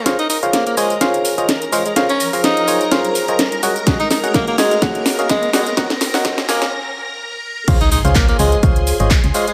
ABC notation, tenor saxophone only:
X:1
M:4/4
L:1/16
Q:"Swing 16ths" 1/4=126
K:Db
V:1 name="Tenor saxophone"
z E E z B, B, A,2 z6 A, A, | z D2 z E4 z8 | z E E z B, B, A,2 z4 A,2 A,2 | z6 B,2 z8 |
z E E z B, B, A,2 z6 A, A, |]